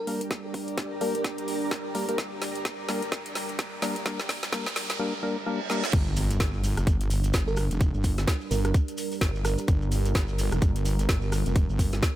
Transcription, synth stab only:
0.07 0.21 G3 medium
0.07 0.21 A#3 medium
0.07 0.21 D4 medium
0.07 0.21 A#4 medium
1.01 1.15 G3 medium
1.01 1.15 A#3 medium
1.01 1.15 D4 medium
1.01 1.15 A#4 loud
1.95 2.07 G3 medium
1.95 2.07 A#3 medium
1.95 2.07 D4 medium
1.95 2.07 A#4 medium
2.09 2.18 G3 medium
2.09 2.18 A#3 medium
2.09 2.18 D4 medium
2.09 2.18 A#4 loud
2.89 3.02 G3 medium
2.89 3.02 A#3 medium
2.89 3.02 D4 medium
2.89 3.02 A#4 medium
3.82 3.96 G3 medium
3.82 3.96 A#3 medium
3.82 3.96 D4 medium
3.82 3.96 A#4 medium
4.06 4.20 G3 medium
4.06 4.20 A#3 medium
4.06 4.20 D4 medium
4.06 4.20 A#4 loud
4.53 4.67 G3 medium
4.53 4.67 A#3 medium
4.53 4.67 D4 medium
4.53 4.67 A#4 loud
4.99 5.13 G3 medium
4.99 5.13 A#3 medium
4.99 5.13 D4 medium
4.99 5.13 A#4 loud
5.23 5.37 G3 loud
5.23 5.37 A#3 medium
5.23 5.37 D4 medium
5.23 5.37 A#4 loud
5.46 5.60 G3 loud
5.46 5.60 A#3 medium
5.46 5.60 D4 medium
5.46 5.60 A#4 loud
5.70 5.84 G3 loud
5.70 5.84 A#3 medium
5.70 5.84 D4 medium
5.70 5.84 A#4 loud

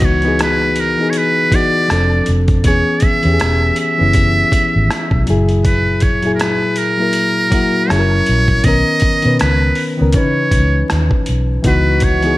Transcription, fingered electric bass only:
0.00 0.95 C#2 medium
1.91 2.20 F1 medium
2.28 2.65 F1 medium
2.65 2.82 E1 medium
3.03 muted fingered electric bass stroke soft
3.25 3.37 E2 medium
3.42 3.70 E1 medium
4.01 4.42 F#1 medium
4.53 muted fingered electric bass stroke soft
4.76 4.87 G#1 medium
5.12 5.24 B1 medium
5.29 6.63 F#1 loud
7.91 8.20 F#1 medium
8.29 8.58 A#1 medium
8.65 8.82 B1 medium
9.03 muted fingered electric bass stroke soft
9.25 9.37 B2 medium
9.41 9.70 C#2 medium
10.01 10.17 C#2 medium
10.15 10.54 C#3 medium
10.53 10.82 C#2 medium
10.92 11.08 D#2 medium
11.29 11.58 B1 medium
11.65 12.38 C#2 medium

